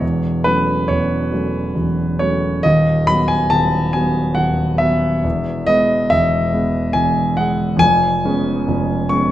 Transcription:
Already playing: C#5
0.01 E1 E2
0.44 F#3 A3 C#4 B4
0.88 E1 E2 C#5
1.32 F#3 A3 C#4
1.75 E1 E2
2.19 F#3 A3 C#4 C#5
2.63 D#1 D#2 D#5
3.07 F#3 B3 B5
3.28 G#5
3.50 D#1 D#2 A5
3.93 F#3 B3 G#5
4.35 D#1 D#2 F#5
4.78 F#3 B3 E5
5.24 E1 E2
5.67 G#3 B3 D#5
6.10 E1 E2 E5
6.54 G#3 B3
6.93 E1 E2 G#5
7.37 G#3 B3 F#5
7.77 F2 G#5
7.81 F1
8.25 G#3 B3 C#4
8.67 F1 F2
9.09 G#3 B3 C#4 C#6

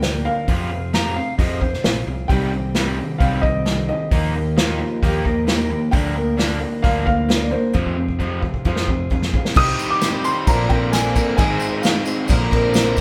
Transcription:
Already playing: D2 G5
0.02 D3 F3 A#3 D4 A#4, snare, open hi-hat
0.25 D3 A#3 D4 A#4 F5
0.47 F2 C3 F3 C4 F4 G#4, kick, open hi-hat
0.71 F2 C3
0.93 F2 C3 F3 C4 F4 G#4 A#5, snare, open hi-hat
1.16 F2 C3 F5
1.38 F2 C3 F3 C4 F4 G#4 D#5, kick, open hi-hat
1.61 F2 C3 C5, kick
1.73 snare
1.84 A#1 F2 C3 F3 C4 F4 G#4, snare, open hi-hat
2.07 C2 F2 C3
2.28 C2 C3 D#3 G3 C4 D#4 G4 G5, kick, open hi-hat
2.52 C3 D#3 C4 D#4 G4
2.74 C3 D#3 G3 C4 D#4 G4, snare, open hi-hat
2.98 C3 D#3
3.18 C2 C3 D#3 G3 C4 D#4 G4 F5, kick, open hi-hat
3.42 C3 D#3 D#5, kick
3.66 C3 D#3 G3 C4 D#4 G4, snare, open hi-hat
3.88 C3 D#3 C4 D#4 G4 D#5
4.11 D#2 D#3 F3 A#3 D#4 G4, kick, open hi-hat
4.34 D#3 A#3 D#4 G4
4.57 D#3 F3 A#3 D#4 F4 G4, snare, open hi-hat
4.79 D#3 A#3
5.02 D#2 D#3 F3 A#3 D#4 G4, kick, open hi-hat
5.25 D#3 A#3 A#4, kick
5.47 D#3 F3 A#3 D#4 G4 A#4, snare, open hi-hat
5.70 D#3 A#3
5.91 D2 D3 F3 A#3 D4 A#4 G5, kick, open hi-hat
6.15 D3 A#3 D4 A#4
6.38 D3 F3 A#3 D4 A#4, snare, open hi-hat
6.61 D3 A#3
6.82 D2 D3 F3 A#3 D4 A#4 F5, kick, open hi-hat
7.05 D3 A#3 F5, kick
7.29 D3 F3 A#3 D4 A#4, snare, open hi-hat
7.44 D5
7.51 D3 A#3 D4 A#4 C5
7.73 F2 C3 F3 C4 F4 G#4, kick
7.86 kick
7.97 F2 C3
8.08 kick
8.19 F2 C3 F3 C4 F4 G#4, kick
8.42 F2 C3, kick
8.54 kick
8.65 F2 C3 F3 C4 F4 G#4, kick
8.76 snare
8.88 F2 C3, kick
9.10 F2 C3 F3 C4 F4 G#4, kick
9.22 snare
9.34 F2 C3 C4 F4 G#4, kick
9.45 snare
9.55 C2 C3 D#3 G3 C4 D#4 G4 C5 D#5 D#6, kick, crash, tambourine
9.59 G4
9.79 ride, tambourine
9.90 D6
10.01 G3 C4 D#4 G4 C5 D#5, snare, ride, tambourine
10.24 C4 D#4 G4 C6, ride, tambourine
10.47 A#1 A#2 D3 F3 A#3 C4 D4 F4 A#4 C5 D5 A#5, kick, ride, tambourine
10.69 F3 C4 D4 A#4 G5, kick, ride
10.92 F4 A#4 C5 F5 G#5, snare, ride, tambourine
11.15 F3 C4 D4 A#4, kick, ride, tambourine
11.37 G#1 G#2 D#3 G#3 C4 D#4 G#4 C5 D#5 G#5, kick, ride, tambourine
11.41 D#4 G#4
11.60 ride, tambourine
11.81 G#3 C4 D#4 G#4 C5 D#5 F5, snare, ride, tambourine
12.05 G#3 C4 D#4 G#4, ride, tambourine
12.27 A#1 A#2 D3 F3 A#3 C4 D4 F4 A#4 C5 D5, kick, ride, tambourine
12.51 F3 C4 D4 A#4, kick, ride
12.74 F4 A#4 C5 D5, snare, ride, tambourine
12.96 D4 A#4, kick, tambourine

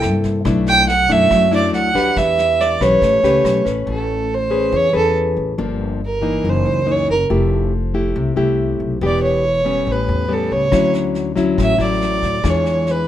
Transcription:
Already playing: C3 A#3 E4 A4
0.02 G2, cross-stick, snare
0.24 kick, snare
0.45 B1 B2 A3 D4 E4, kick, cross-stick, snare
0.66 G5, snare
0.88 F#5, snare
1.09 F#2 A3 D4 E4 E5, kick, snare
1.31 F#2 F#3, kick, cross-stick, snare
1.51 A3 D4 E4, snare
1.55 D5
1.73 D2 F#5, snare
1.95 D4 G4 B4, kick, snare
2.16 E2 E3 E5, kick, cross-stick, snare
2.38 snare
2.60 D5, snare
2.80 B1 C#4 G4 B4 C#5, kick, cross-stick, snare
3.02 A1 A3, kick, snare
3.23 C#2 C#4 G4 B4, snare
3.44 B1, cross-stick, snare
3.65 A1 C#4 B4, kick, snare
3.86 A1 A3 A4
4.34 C5
4.50 C#4 G#4 B4
4.72 E2 E3
4.77 C#5
4.92 E2 C#4 G#4 B4
4.97 A4
5.37 A1
5.58 G1 G2 F3 A#3 D4
6.06 A#4
6.21 E3 A#3 D#4
6.43 F#1 F#2
6.49 C5
6.66 C#2
6.86 E3 A#3 D#4
6.92 C#5
7.09 F#1 A#4
7.30 F1 F3 A3 E4 G4
7.94 A3 E4 G4
8.16 C2 C3
8.36 C2 A3 E4 G4
8.80 B1
9.01 E1 E3 B3 D4 G4
9.06 D5
9.23 C#5
9.65 G3 B3 C#4
9.86 A1 A2
9.91 B4
10.09 E2
10.28 G3 B3 C#4
10.33 A4
10.51 C#2 C#5
10.71 D2 D3 F#3 C#4 E4, kick, cross-stick, snare
10.94 snare
11.15 snare
11.36 F#3 C#4 E4, kick, snare
11.56 A1 A2, kick, cross-stick, snare
11.63 E5
11.78 A1 F#3 E4, snare
11.82 D5
12.02 snare
12.22 D2, kick, snare
12.44 E2 E3 G#3 D4 F4, kick, cross-stick, snare
12.50 C#5
12.66 snare
12.87 snare
12.91 B4

